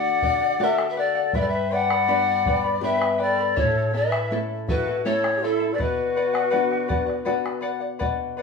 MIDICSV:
0, 0, Header, 1, 6, 480
1, 0, Start_track
1, 0, Key_signature, 2, "minor"
1, 0, Tempo, 741656
1, 869, Time_signature, 3, 2, 24, 8
1, 5451, End_track
2, 0, Start_track
2, 0, Title_t, "Charango"
2, 0, Program_c, 0, 24
2, 0, Note_on_c, 0, 69, 61
2, 0, Note_on_c, 0, 74, 58
2, 0, Note_on_c, 0, 78, 64
2, 139, Note_off_c, 0, 69, 0
2, 144, Note_off_c, 0, 74, 0
2, 146, Note_off_c, 0, 78, 0
2, 147, Note_on_c, 0, 69, 60
2, 152, Note_on_c, 0, 74, 65
2, 154, Note_on_c, 0, 78, 64
2, 258, Note_off_c, 0, 78, 0
2, 265, Note_off_c, 0, 74, 0
2, 266, Note_on_c, 0, 78, 50
2, 268, Note_off_c, 0, 69, 0
2, 273, Note_on_c, 0, 74, 40
2, 380, Note_off_c, 0, 74, 0
2, 384, Note_off_c, 0, 78, 0
2, 388, Note_on_c, 0, 74, 80
2, 389, Note_on_c, 0, 69, 75
2, 392, Note_on_c, 0, 78, 84
2, 615, Note_off_c, 0, 69, 0
2, 621, Note_off_c, 0, 74, 0
2, 621, Note_off_c, 0, 78, 0
2, 623, Note_on_c, 0, 69, 52
2, 628, Note_on_c, 0, 74, 58
2, 628, Note_on_c, 0, 78, 62
2, 736, Note_off_c, 0, 78, 0
2, 744, Note_on_c, 0, 78, 57
2, 746, Note_off_c, 0, 69, 0
2, 749, Note_off_c, 0, 74, 0
2, 758, Note_on_c, 0, 74, 41
2, 866, Note_off_c, 0, 74, 0
2, 866, Note_off_c, 0, 78, 0
2, 867, Note_on_c, 0, 79, 51
2, 872, Note_on_c, 0, 71, 60
2, 873, Note_on_c, 0, 74, 64
2, 876, Note_on_c, 0, 83, 65
2, 1099, Note_off_c, 0, 79, 0
2, 1104, Note_off_c, 0, 71, 0
2, 1107, Note_off_c, 0, 74, 0
2, 1107, Note_on_c, 0, 79, 58
2, 1112, Note_off_c, 0, 83, 0
2, 1112, Note_on_c, 0, 71, 57
2, 1115, Note_on_c, 0, 74, 63
2, 1120, Note_on_c, 0, 83, 63
2, 1225, Note_off_c, 0, 83, 0
2, 1228, Note_off_c, 0, 79, 0
2, 1230, Note_off_c, 0, 71, 0
2, 1232, Note_off_c, 0, 74, 0
2, 1233, Note_on_c, 0, 83, 57
2, 1241, Note_on_c, 0, 74, 51
2, 1244, Note_on_c, 0, 71, 45
2, 1344, Note_off_c, 0, 71, 0
2, 1344, Note_off_c, 0, 83, 0
2, 1345, Note_off_c, 0, 74, 0
2, 1347, Note_on_c, 0, 67, 75
2, 1351, Note_on_c, 0, 71, 76
2, 1352, Note_on_c, 0, 83, 87
2, 1353, Note_on_c, 0, 74, 83
2, 1588, Note_off_c, 0, 67, 0
2, 1590, Note_off_c, 0, 71, 0
2, 1591, Note_off_c, 0, 74, 0
2, 1591, Note_off_c, 0, 83, 0
2, 1596, Note_on_c, 0, 79, 62
2, 1598, Note_on_c, 0, 71, 60
2, 1601, Note_on_c, 0, 74, 68
2, 1602, Note_on_c, 0, 83, 67
2, 1701, Note_off_c, 0, 83, 0
2, 1708, Note_off_c, 0, 74, 0
2, 1709, Note_on_c, 0, 83, 50
2, 1711, Note_off_c, 0, 71, 0
2, 1712, Note_off_c, 0, 79, 0
2, 1716, Note_on_c, 0, 74, 49
2, 1719, Note_on_c, 0, 71, 38
2, 1822, Note_off_c, 0, 71, 0
2, 1827, Note_off_c, 0, 74, 0
2, 1829, Note_off_c, 0, 83, 0
2, 1830, Note_on_c, 0, 71, 59
2, 1831, Note_on_c, 0, 79, 56
2, 1835, Note_on_c, 0, 74, 67
2, 1837, Note_on_c, 0, 83, 65
2, 2052, Note_off_c, 0, 79, 0
2, 2055, Note_off_c, 0, 74, 0
2, 2056, Note_off_c, 0, 71, 0
2, 2060, Note_on_c, 0, 79, 55
2, 2063, Note_off_c, 0, 83, 0
2, 2063, Note_on_c, 0, 74, 64
2, 2064, Note_on_c, 0, 71, 63
2, 2071, Note_on_c, 0, 83, 62
2, 2184, Note_off_c, 0, 79, 0
2, 2184, Note_off_c, 0, 83, 0
2, 2186, Note_off_c, 0, 74, 0
2, 2187, Note_off_c, 0, 71, 0
2, 2192, Note_on_c, 0, 83, 51
2, 2201, Note_on_c, 0, 74, 47
2, 2204, Note_on_c, 0, 71, 42
2, 2304, Note_on_c, 0, 73, 72
2, 2306, Note_off_c, 0, 71, 0
2, 2306, Note_on_c, 0, 76, 69
2, 2307, Note_off_c, 0, 83, 0
2, 2308, Note_off_c, 0, 74, 0
2, 2309, Note_on_c, 0, 64, 79
2, 2310, Note_on_c, 0, 69, 82
2, 2310, Note_on_c, 0, 81, 77
2, 2538, Note_off_c, 0, 76, 0
2, 2540, Note_off_c, 0, 64, 0
2, 2542, Note_off_c, 0, 69, 0
2, 2545, Note_off_c, 0, 81, 0
2, 2545, Note_on_c, 0, 76, 63
2, 2547, Note_off_c, 0, 73, 0
2, 2548, Note_on_c, 0, 64, 64
2, 2550, Note_on_c, 0, 69, 61
2, 2553, Note_on_c, 0, 81, 70
2, 2662, Note_off_c, 0, 81, 0
2, 2666, Note_off_c, 0, 69, 0
2, 2667, Note_off_c, 0, 76, 0
2, 2668, Note_off_c, 0, 64, 0
2, 2670, Note_on_c, 0, 81, 55
2, 2674, Note_on_c, 0, 69, 52
2, 2679, Note_on_c, 0, 64, 50
2, 2789, Note_off_c, 0, 64, 0
2, 2789, Note_off_c, 0, 69, 0
2, 2790, Note_off_c, 0, 81, 0
2, 2794, Note_on_c, 0, 76, 58
2, 2797, Note_on_c, 0, 64, 66
2, 2797, Note_on_c, 0, 69, 68
2, 2802, Note_on_c, 0, 81, 68
2, 3025, Note_off_c, 0, 76, 0
2, 3029, Note_off_c, 0, 64, 0
2, 3030, Note_off_c, 0, 69, 0
2, 3033, Note_on_c, 0, 76, 64
2, 3035, Note_off_c, 0, 81, 0
2, 3037, Note_on_c, 0, 64, 65
2, 3038, Note_on_c, 0, 69, 67
2, 3043, Note_on_c, 0, 81, 71
2, 3148, Note_off_c, 0, 81, 0
2, 3151, Note_off_c, 0, 76, 0
2, 3153, Note_off_c, 0, 64, 0
2, 3154, Note_off_c, 0, 69, 0
2, 3156, Note_on_c, 0, 81, 47
2, 3161, Note_on_c, 0, 69, 45
2, 3166, Note_on_c, 0, 64, 40
2, 3268, Note_off_c, 0, 64, 0
2, 3268, Note_off_c, 0, 69, 0
2, 3271, Note_off_c, 0, 81, 0
2, 3271, Note_on_c, 0, 73, 84
2, 3275, Note_on_c, 0, 64, 83
2, 3275, Note_on_c, 0, 76, 77
2, 3276, Note_on_c, 0, 69, 90
2, 3279, Note_on_c, 0, 81, 93
2, 3504, Note_off_c, 0, 76, 0
2, 3510, Note_off_c, 0, 64, 0
2, 3510, Note_off_c, 0, 73, 0
2, 3512, Note_on_c, 0, 76, 56
2, 3513, Note_off_c, 0, 69, 0
2, 3514, Note_off_c, 0, 81, 0
2, 3518, Note_on_c, 0, 64, 56
2, 3522, Note_on_c, 0, 69, 66
2, 3522, Note_on_c, 0, 81, 64
2, 3616, Note_off_c, 0, 81, 0
2, 3621, Note_off_c, 0, 69, 0
2, 3624, Note_on_c, 0, 81, 51
2, 3628, Note_off_c, 0, 64, 0
2, 3629, Note_on_c, 0, 69, 47
2, 3630, Note_off_c, 0, 76, 0
2, 3636, Note_on_c, 0, 64, 45
2, 3745, Note_off_c, 0, 64, 0
2, 3747, Note_off_c, 0, 81, 0
2, 3747, Note_on_c, 0, 71, 51
2, 3749, Note_off_c, 0, 69, 0
2, 3754, Note_on_c, 0, 74, 63
2, 3756, Note_on_c, 0, 78, 62
2, 3979, Note_off_c, 0, 71, 0
2, 3984, Note_off_c, 0, 74, 0
2, 3986, Note_off_c, 0, 78, 0
2, 3987, Note_on_c, 0, 71, 59
2, 3991, Note_on_c, 0, 74, 70
2, 3994, Note_on_c, 0, 78, 66
2, 4092, Note_off_c, 0, 78, 0
2, 4100, Note_on_c, 0, 78, 61
2, 4101, Note_off_c, 0, 74, 0
2, 4108, Note_off_c, 0, 71, 0
2, 4109, Note_on_c, 0, 74, 50
2, 4206, Note_off_c, 0, 74, 0
2, 4208, Note_on_c, 0, 71, 71
2, 4209, Note_off_c, 0, 78, 0
2, 4214, Note_on_c, 0, 74, 75
2, 4217, Note_on_c, 0, 78, 82
2, 4445, Note_off_c, 0, 71, 0
2, 4450, Note_off_c, 0, 74, 0
2, 4452, Note_on_c, 0, 71, 63
2, 4454, Note_off_c, 0, 78, 0
2, 4458, Note_on_c, 0, 74, 66
2, 4462, Note_on_c, 0, 78, 78
2, 4563, Note_off_c, 0, 78, 0
2, 4568, Note_off_c, 0, 74, 0
2, 4571, Note_on_c, 0, 78, 56
2, 4576, Note_on_c, 0, 74, 44
2, 4581, Note_off_c, 0, 71, 0
2, 4688, Note_off_c, 0, 74, 0
2, 4692, Note_off_c, 0, 78, 0
2, 4692, Note_on_c, 0, 71, 67
2, 4695, Note_on_c, 0, 74, 78
2, 4700, Note_on_c, 0, 78, 73
2, 4915, Note_off_c, 0, 71, 0
2, 4923, Note_off_c, 0, 74, 0
2, 4923, Note_on_c, 0, 71, 63
2, 4927, Note_off_c, 0, 78, 0
2, 4931, Note_on_c, 0, 74, 65
2, 4935, Note_on_c, 0, 78, 73
2, 5041, Note_off_c, 0, 78, 0
2, 5048, Note_off_c, 0, 74, 0
2, 5049, Note_on_c, 0, 78, 56
2, 5055, Note_on_c, 0, 74, 47
2, 5056, Note_off_c, 0, 71, 0
2, 5166, Note_off_c, 0, 74, 0
2, 5168, Note_off_c, 0, 78, 0
2, 5171, Note_on_c, 0, 71, 73
2, 5174, Note_on_c, 0, 74, 76
2, 5175, Note_on_c, 0, 78, 83
2, 5408, Note_off_c, 0, 71, 0
2, 5416, Note_off_c, 0, 74, 0
2, 5416, Note_on_c, 0, 71, 56
2, 5423, Note_off_c, 0, 78, 0
2, 5424, Note_on_c, 0, 74, 61
2, 5429, Note_on_c, 0, 78, 72
2, 5451, Note_off_c, 0, 71, 0
2, 5451, Note_off_c, 0, 74, 0
2, 5451, Note_off_c, 0, 78, 0
2, 5451, End_track
3, 0, Start_track
3, 0, Title_t, "Pan flute"
3, 0, Program_c, 1, 75
3, 0, Note_on_c, 1, 78, 116
3, 404, Note_on_c, 1, 76, 92
3, 414, Note_off_c, 1, 78, 0
3, 573, Note_off_c, 1, 76, 0
3, 577, Note_on_c, 1, 76, 68
3, 635, Note_on_c, 1, 74, 91
3, 644, Note_off_c, 1, 76, 0
3, 872, Note_on_c, 1, 76, 92
3, 882, Note_off_c, 1, 74, 0
3, 911, Note_on_c, 1, 74, 80
3, 920, Note_off_c, 1, 76, 0
3, 959, Note_on_c, 1, 76, 93
3, 968, Note_off_c, 1, 74, 0
3, 1122, Note_on_c, 1, 78, 116
3, 1132, Note_off_c, 1, 76, 0
3, 1666, Note_off_c, 1, 78, 0
3, 1838, Note_on_c, 1, 76, 96
3, 2074, Note_off_c, 1, 76, 0
3, 2083, Note_on_c, 1, 74, 98
3, 2313, Note_on_c, 1, 73, 90
3, 2322, Note_off_c, 1, 74, 0
3, 2551, Note_off_c, 1, 73, 0
3, 2561, Note_on_c, 1, 76, 90
3, 2841, Note_off_c, 1, 76, 0
3, 3039, Note_on_c, 1, 71, 89
3, 3258, Note_off_c, 1, 71, 0
3, 3269, Note_on_c, 1, 73, 87
3, 3520, Note_on_c, 1, 69, 88
3, 3530, Note_off_c, 1, 73, 0
3, 3711, Note_on_c, 1, 74, 58
3, 3721, Note_off_c, 1, 69, 0
3, 3761, Note_on_c, 1, 71, 87
3, 3771, Note_off_c, 1, 74, 0
3, 4955, Note_off_c, 1, 71, 0
3, 5451, End_track
4, 0, Start_track
4, 0, Title_t, "Quena"
4, 0, Program_c, 2, 77
4, 0, Note_on_c, 2, 74, 100
4, 412, Note_on_c, 2, 69, 85
4, 422, Note_off_c, 2, 74, 0
4, 586, Note_off_c, 2, 69, 0
4, 589, Note_on_c, 2, 71, 60
4, 648, Note_on_c, 2, 69, 77
4, 658, Note_off_c, 2, 71, 0
4, 874, Note_on_c, 2, 71, 82
4, 884, Note_off_c, 2, 69, 0
4, 924, Note_on_c, 2, 69, 70
4, 934, Note_off_c, 2, 71, 0
4, 971, Note_on_c, 2, 71, 88
4, 981, Note_off_c, 2, 69, 0
4, 1130, Note_on_c, 2, 74, 94
4, 1140, Note_off_c, 2, 71, 0
4, 1844, Note_on_c, 2, 71, 81
4, 1853, Note_off_c, 2, 74, 0
4, 2076, Note_off_c, 2, 71, 0
4, 2089, Note_on_c, 2, 69, 73
4, 2318, Note_off_c, 2, 69, 0
4, 2318, Note_on_c, 2, 69, 82
4, 2554, Note_off_c, 2, 69, 0
4, 2558, Note_on_c, 2, 71, 78
4, 2839, Note_off_c, 2, 71, 0
4, 3026, Note_on_c, 2, 66, 72
4, 3250, Note_off_c, 2, 66, 0
4, 3276, Note_on_c, 2, 69, 80
4, 3521, Note_on_c, 2, 64, 68
4, 3531, Note_off_c, 2, 69, 0
4, 3721, Note_on_c, 2, 71, 51
4, 3730, Note_off_c, 2, 64, 0
4, 3765, Note_on_c, 2, 66, 84
4, 3775, Note_off_c, 2, 71, 0
4, 4957, Note_off_c, 2, 66, 0
4, 5451, End_track
5, 0, Start_track
5, 0, Title_t, "Nylon-string guitar"
5, 0, Program_c, 3, 24
5, 0, Note_on_c, 3, 50, 66
5, 0, Note_on_c, 3, 57, 49
5, 0, Note_on_c, 3, 62, 45
5, 0, Note_on_c, 3, 66, 56
5, 372, Note_off_c, 3, 57, 0
5, 374, Note_off_c, 3, 62, 0
5, 376, Note_off_c, 3, 66, 0
5, 380, Note_on_c, 3, 57, 51
5, 384, Note_on_c, 3, 62, 49
5, 386, Note_on_c, 3, 66, 57
5, 843, Note_off_c, 3, 50, 0
5, 850, Note_off_c, 3, 57, 0
5, 852, Note_off_c, 3, 62, 0
5, 853, Note_off_c, 3, 66, 0
5, 868, Note_on_c, 3, 43, 67
5, 1345, Note_on_c, 3, 59, 51
5, 1348, Note_on_c, 3, 62, 48
5, 1351, Note_on_c, 3, 67, 55
5, 1809, Note_off_c, 3, 59, 0
5, 1810, Note_off_c, 3, 62, 0
5, 1812, Note_off_c, 3, 67, 0
5, 1816, Note_on_c, 3, 59, 53
5, 1820, Note_on_c, 3, 62, 49
5, 1820, Note_on_c, 3, 67, 59
5, 2283, Note_off_c, 3, 43, 0
5, 2288, Note_off_c, 3, 59, 0
5, 2289, Note_off_c, 3, 62, 0
5, 2290, Note_off_c, 3, 67, 0
5, 2308, Note_on_c, 3, 45, 66
5, 2786, Note_on_c, 3, 57, 51
5, 2791, Note_on_c, 3, 61, 46
5, 2794, Note_on_c, 3, 64, 59
5, 3254, Note_off_c, 3, 57, 0
5, 3254, Note_off_c, 3, 61, 0
5, 3257, Note_off_c, 3, 64, 0
5, 3268, Note_on_c, 3, 57, 54
5, 3272, Note_on_c, 3, 61, 48
5, 3272, Note_on_c, 3, 64, 58
5, 3722, Note_off_c, 3, 45, 0
5, 3734, Note_off_c, 3, 57, 0
5, 3735, Note_off_c, 3, 61, 0
5, 3736, Note_off_c, 3, 64, 0
5, 3742, Note_on_c, 3, 47, 67
5, 4225, Note_on_c, 3, 59, 52
5, 4229, Note_on_c, 3, 62, 47
5, 4232, Note_on_c, 3, 66, 56
5, 4688, Note_off_c, 3, 59, 0
5, 4692, Note_off_c, 3, 62, 0
5, 4692, Note_off_c, 3, 66, 0
5, 4696, Note_on_c, 3, 59, 53
5, 4700, Note_on_c, 3, 62, 46
5, 4700, Note_on_c, 3, 66, 57
5, 5160, Note_off_c, 3, 47, 0
5, 5168, Note_off_c, 3, 59, 0
5, 5170, Note_off_c, 3, 62, 0
5, 5170, Note_off_c, 3, 66, 0
5, 5188, Note_on_c, 3, 47, 59
5, 5451, Note_off_c, 3, 47, 0
5, 5451, End_track
6, 0, Start_track
6, 0, Title_t, "Bombo"
6, 144, Note_on_c, 9, 43, 68
6, 209, Note_off_c, 9, 43, 0
6, 508, Note_on_c, 9, 37, 54
6, 573, Note_off_c, 9, 37, 0
6, 863, Note_on_c, 9, 43, 68
6, 928, Note_off_c, 9, 43, 0
6, 1233, Note_on_c, 9, 37, 61
6, 1297, Note_off_c, 9, 37, 0
6, 1355, Note_on_c, 9, 37, 22
6, 1420, Note_off_c, 9, 37, 0
6, 1591, Note_on_c, 9, 43, 69
6, 1656, Note_off_c, 9, 43, 0
6, 1952, Note_on_c, 9, 37, 56
6, 2017, Note_off_c, 9, 37, 0
6, 2312, Note_on_c, 9, 43, 81
6, 2376, Note_off_c, 9, 43, 0
6, 2668, Note_on_c, 9, 37, 66
6, 2733, Note_off_c, 9, 37, 0
6, 2796, Note_on_c, 9, 37, 22
6, 2860, Note_off_c, 9, 37, 0
6, 3031, Note_on_c, 9, 43, 73
6, 3096, Note_off_c, 9, 43, 0
6, 3392, Note_on_c, 9, 37, 55
6, 3457, Note_off_c, 9, 37, 0
6, 3751, Note_on_c, 9, 43, 68
6, 3816, Note_off_c, 9, 43, 0
6, 4109, Note_on_c, 9, 37, 58
6, 4174, Note_off_c, 9, 37, 0
6, 4230, Note_on_c, 9, 37, 21
6, 4295, Note_off_c, 9, 37, 0
6, 4347, Note_on_c, 9, 37, 23
6, 4411, Note_off_c, 9, 37, 0
6, 4465, Note_on_c, 9, 43, 70
6, 4530, Note_off_c, 9, 43, 0
6, 4593, Note_on_c, 9, 37, 23
6, 4657, Note_off_c, 9, 37, 0
6, 4707, Note_on_c, 9, 37, 25
6, 4772, Note_off_c, 9, 37, 0
6, 4826, Note_on_c, 9, 37, 54
6, 4891, Note_off_c, 9, 37, 0
6, 5184, Note_on_c, 9, 43, 69
6, 5249, Note_off_c, 9, 43, 0
6, 5451, End_track
0, 0, End_of_file